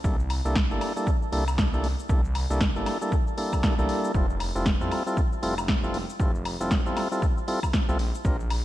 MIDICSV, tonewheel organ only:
0, 0, Header, 1, 2, 480
1, 0, Start_track
1, 0, Tempo, 512821
1, 40, Time_signature, 4, 2, 24, 8
1, 8095, End_track
2, 0, Start_track
2, 0, Title_t, "Tonewheel organ"
2, 0, Program_c, 0, 16
2, 37, Note_on_c, 0, 55, 81
2, 39, Note_on_c, 0, 58, 74
2, 40, Note_on_c, 0, 62, 71
2, 42, Note_on_c, 0, 64, 73
2, 43, Note_on_c, 0, 69, 89
2, 151, Note_off_c, 0, 55, 0
2, 151, Note_off_c, 0, 58, 0
2, 152, Note_off_c, 0, 62, 0
2, 153, Note_off_c, 0, 64, 0
2, 153, Note_off_c, 0, 69, 0
2, 420, Note_on_c, 0, 55, 85
2, 421, Note_on_c, 0, 58, 75
2, 423, Note_on_c, 0, 62, 79
2, 424, Note_on_c, 0, 64, 77
2, 425, Note_on_c, 0, 69, 93
2, 555, Note_off_c, 0, 55, 0
2, 556, Note_off_c, 0, 58, 0
2, 556, Note_off_c, 0, 62, 0
2, 557, Note_off_c, 0, 64, 0
2, 558, Note_off_c, 0, 69, 0
2, 660, Note_on_c, 0, 55, 80
2, 661, Note_on_c, 0, 58, 72
2, 663, Note_on_c, 0, 62, 74
2, 664, Note_on_c, 0, 64, 73
2, 666, Note_on_c, 0, 69, 89
2, 867, Note_off_c, 0, 55, 0
2, 868, Note_off_c, 0, 58, 0
2, 868, Note_off_c, 0, 62, 0
2, 869, Note_off_c, 0, 64, 0
2, 870, Note_off_c, 0, 69, 0
2, 900, Note_on_c, 0, 55, 89
2, 901, Note_on_c, 0, 58, 79
2, 903, Note_on_c, 0, 62, 82
2, 904, Note_on_c, 0, 64, 82
2, 906, Note_on_c, 0, 69, 98
2, 1035, Note_off_c, 0, 55, 0
2, 1036, Note_off_c, 0, 58, 0
2, 1037, Note_off_c, 0, 62, 0
2, 1037, Note_off_c, 0, 64, 0
2, 1038, Note_off_c, 0, 69, 0
2, 1237, Note_on_c, 0, 55, 97
2, 1239, Note_on_c, 0, 58, 85
2, 1240, Note_on_c, 0, 62, 90
2, 1242, Note_on_c, 0, 64, 90
2, 1243, Note_on_c, 0, 69, 105
2, 1350, Note_off_c, 0, 55, 0
2, 1351, Note_off_c, 0, 58, 0
2, 1352, Note_off_c, 0, 62, 0
2, 1353, Note_off_c, 0, 64, 0
2, 1353, Note_off_c, 0, 69, 0
2, 1620, Note_on_c, 0, 55, 81
2, 1621, Note_on_c, 0, 58, 73
2, 1623, Note_on_c, 0, 62, 72
2, 1624, Note_on_c, 0, 64, 74
2, 1626, Note_on_c, 0, 69, 90
2, 1755, Note_off_c, 0, 55, 0
2, 1756, Note_off_c, 0, 58, 0
2, 1757, Note_off_c, 0, 62, 0
2, 1757, Note_off_c, 0, 64, 0
2, 1758, Note_off_c, 0, 69, 0
2, 1957, Note_on_c, 0, 55, 80
2, 1959, Note_on_c, 0, 58, 73
2, 1960, Note_on_c, 0, 62, 75
2, 1962, Note_on_c, 0, 64, 74
2, 1963, Note_on_c, 0, 69, 88
2, 2070, Note_off_c, 0, 55, 0
2, 2071, Note_off_c, 0, 58, 0
2, 2072, Note_off_c, 0, 62, 0
2, 2073, Note_off_c, 0, 64, 0
2, 2073, Note_off_c, 0, 69, 0
2, 2340, Note_on_c, 0, 55, 85
2, 2341, Note_on_c, 0, 58, 78
2, 2343, Note_on_c, 0, 62, 77
2, 2344, Note_on_c, 0, 64, 77
2, 2346, Note_on_c, 0, 69, 92
2, 2475, Note_off_c, 0, 55, 0
2, 2476, Note_off_c, 0, 58, 0
2, 2476, Note_off_c, 0, 62, 0
2, 2477, Note_off_c, 0, 64, 0
2, 2478, Note_off_c, 0, 69, 0
2, 2580, Note_on_c, 0, 55, 80
2, 2581, Note_on_c, 0, 58, 73
2, 2583, Note_on_c, 0, 62, 72
2, 2584, Note_on_c, 0, 64, 73
2, 2586, Note_on_c, 0, 69, 87
2, 2787, Note_off_c, 0, 55, 0
2, 2788, Note_off_c, 0, 58, 0
2, 2788, Note_off_c, 0, 62, 0
2, 2789, Note_off_c, 0, 64, 0
2, 2790, Note_off_c, 0, 69, 0
2, 2820, Note_on_c, 0, 55, 88
2, 2821, Note_on_c, 0, 58, 80
2, 2823, Note_on_c, 0, 62, 83
2, 2824, Note_on_c, 0, 64, 80
2, 2825, Note_on_c, 0, 69, 97
2, 2955, Note_off_c, 0, 55, 0
2, 2956, Note_off_c, 0, 58, 0
2, 2956, Note_off_c, 0, 62, 0
2, 2957, Note_off_c, 0, 64, 0
2, 2958, Note_off_c, 0, 69, 0
2, 3157, Note_on_c, 0, 55, 81
2, 3159, Note_on_c, 0, 58, 74
2, 3160, Note_on_c, 0, 62, 74
2, 3161, Note_on_c, 0, 64, 71
2, 3163, Note_on_c, 0, 69, 85
2, 3507, Note_off_c, 0, 55, 0
2, 3508, Note_off_c, 0, 58, 0
2, 3508, Note_off_c, 0, 62, 0
2, 3509, Note_off_c, 0, 64, 0
2, 3510, Note_off_c, 0, 69, 0
2, 3540, Note_on_c, 0, 55, 99
2, 3541, Note_on_c, 0, 58, 89
2, 3543, Note_on_c, 0, 62, 88
2, 3544, Note_on_c, 0, 64, 88
2, 3546, Note_on_c, 0, 69, 105
2, 3855, Note_off_c, 0, 55, 0
2, 3856, Note_off_c, 0, 58, 0
2, 3857, Note_off_c, 0, 62, 0
2, 3857, Note_off_c, 0, 64, 0
2, 3858, Note_off_c, 0, 69, 0
2, 3877, Note_on_c, 0, 55, 79
2, 3879, Note_on_c, 0, 60, 74
2, 3880, Note_on_c, 0, 64, 72
2, 3881, Note_on_c, 0, 65, 74
2, 3883, Note_on_c, 0, 69, 89
2, 3990, Note_off_c, 0, 55, 0
2, 3991, Note_off_c, 0, 60, 0
2, 3992, Note_off_c, 0, 64, 0
2, 3993, Note_off_c, 0, 65, 0
2, 3993, Note_off_c, 0, 69, 0
2, 4259, Note_on_c, 0, 55, 85
2, 4261, Note_on_c, 0, 60, 78
2, 4262, Note_on_c, 0, 64, 75
2, 4264, Note_on_c, 0, 65, 78
2, 4265, Note_on_c, 0, 69, 89
2, 4395, Note_off_c, 0, 55, 0
2, 4396, Note_off_c, 0, 60, 0
2, 4396, Note_off_c, 0, 64, 0
2, 4397, Note_off_c, 0, 65, 0
2, 4398, Note_off_c, 0, 69, 0
2, 4499, Note_on_c, 0, 55, 80
2, 4501, Note_on_c, 0, 60, 73
2, 4502, Note_on_c, 0, 64, 74
2, 4504, Note_on_c, 0, 65, 75
2, 4505, Note_on_c, 0, 69, 88
2, 4707, Note_off_c, 0, 55, 0
2, 4708, Note_off_c, 0, 60, 0
2, 4708, Note_off_c, 0, 64, 0
2, 4709, Note_off_c, 0, 65, 0
2, 4710, Note_off_c, 0, 69, 0
2, 4739, Note_on_c, 0, 55, 89
2, 4741, Note_on_c, 0, 60, 82
2, 4742, Note_on_c, 0, 64, 80
2, 4743, Note_on_c, 0, 65, 81
2, 4745, Note_on_c, 0, 69, 98
2, 4875, Note_off_c, 0, 55, 0
2, 4876, Note_off_c, 0, 60, 0
2, 4876, Note_off_c, 0, 64, 0
2, 4877, Note_off_c, 0, 65, 0
2, 4878, Note_off_c, 0, 69, 0
2, 5077, Note_on_c, 0, 55, 92
2, 5078, Note_on_c, 0, 60, 86
2, 5080, Note_on_c, 0, 64, 88
2, 5081, Note_on_c, 0, 65, 85
2, 5082, Note_on_c, 0, 69, 106
2, 5190, Note_off_c, 0, 55, 0
2, 5191, Note_off_c, 0, 60, 0
2, 5192, Note_off_c, 0, 64, 0
2, 5192, Note_off_c, 0, 65, 0
2, 5193, Note_off_c, 0, 69, 0
2, 5460, Note_on_c, 0, 55, 78
2, 5461, Note_on_c, 0, 60, 71
2, 5462, Note_on_c, 0, 64, 73
2, 5464, Note_on_c, 0, 65, 71
2, 5465, Note_on_c, 0, 69, 88
2, 5595, Note_off_c, 0, 55, 0
2, 5596, Note_off_c, 0, 60, 0
2, 5596, Note_off_c, 0, 64, 0
2, 5597, Note_off_c, 0, 65, 0
2, 5598, Note_off_c, 0, 69, 0
2, 5797, Note_on_c, 0, 55, 80
2, 5799, Note_on_c, 0, 60, 74
2, 5800, Note_on_c, 0, 64, 75
2, 5802, Note_on_c, 0, 65, 73
2, 5803, Note_on_c, 0, 69, 86
2, 5910, Note_off_c, 0, 55, 0
2, 5911, Note_off_c, 0, 60, 0
2, 5912, Note_off_c, 0, 64, 0
2, 5913, Note_off_c, 0, 65, 0
2, 5913, Note_off_c, 0, 69, 0
2, 6180, Note_on_c, 0, 55, 84
2, 6181, Note_on_c, 0, 60, 78
2, 6183, Note_on_c, 0, 64, 78
2, 6184, Note_on_c, 0, 65, 75
2, 6185, Note_on_c, 0, 69, 93
2, 6315, Note_off_c, 0, 55, 0
2, 6316, Note_off_c, 0, 60, 0
2, 6316, Note_off_c, 0, 64, 0
2, 6317, Note_off_c, 0, 65, 0
2, 6318, Note_off_c, 0, 69, 0
2, 6420, Note_on_c, 0, 55, 82
2, 6421, Note_on_c, 0, 60, 74
2, 6422, Note_on_c, 0, 64, 72
2, 6424, Note_on_c, 0, 65, 74
2, 6426, Note_on_c, 0, 69, 88
2, 6627, Note_off_c, 0, 55, 0
2, 6628, Note_off_c, 0, 60, 0
2, 6628, Note_off_c, 0, 64, 0
2, 6629, Note_off_c, 0, 65, 0
2, 6630, Note_off_c, 0, 69, 0
2, 6660, Note_on_c, 0, 55, 92
2, 6661, Note_on_c, 0, 60, 83
2, 6663, Note_on_c, 0, 64, 82
2, 6664, Note_on_c, 0, 65, 81
2, 6666, Note_on_c, 0, 69, 100
2, 6795, Note_off_c, 0, 55, 0
2, 6796, Note_off_c, 0, 60, 0
2, 6796, Note_off_c, 0, 64, 0
2, 6797, Note_off_c, 0, 65, 0
2, 6798, Note_off_c, 0, 69, 0
2, 6997, Note_on_c, 0, 55, 95
2, 6999, Note_on_c, 0, 60, 88
2, 7000, Note_on_c, 0, 64, 86
2, 7002, Note_on_c, 0, 65, 85
2, 7003, Note_on_c, 0, 69, 103
2, 7110, Note_off_c, 0, 55, 0
2, 7111, Note_off_c, 0, 60, 0
2, 7112, Note_off_c, 0, 64, 0
2, 7113, Note_off_c, 0, 65, 0
2, 7113, Note_off_c, 0, 69, 0
2, 7380, Note_on_c, 0, 55, 77
2, 7381, Note_on_c, 0, 60, 72
2, 7383, Note_on_c, 0, 64, 74
2, 7384, Note_on_c, 0, 65, 74
2, 7386, Note_on_c, 0, 69, 88
2, 7467, Note_off_c, 0, 55, 0
2, 7468, Note_off_c, 0, 60, 0
2, 7468, Note_off_c, 0, 64, 0
2, 7469, Note_off_c, 0, 65, 0
2, 7470, Note_off_c, 0, 69, 0
2, 7717, Note_on_c, 0, 55, 80
2, 7719, Note_on_c, 0, 60, 73
2, 7720, Note_on_c, 0, 62, 73
2, 7722, Note_on_c, 0, 65, 73
2, 7723, Note_on_c, 0, 70, 89
2, 7830, Note_off_c, 0, 55, 0
2, 7831, Note_off_c, 0, 60, 0
2, 7832, Note_off_c, 0, 62, 0
2, 7833, Note_off_c, 0, 65, 0
2, 7833, Note_off_c, 0, 70, 0
2, 8095, End_track
0, 0, End_of_file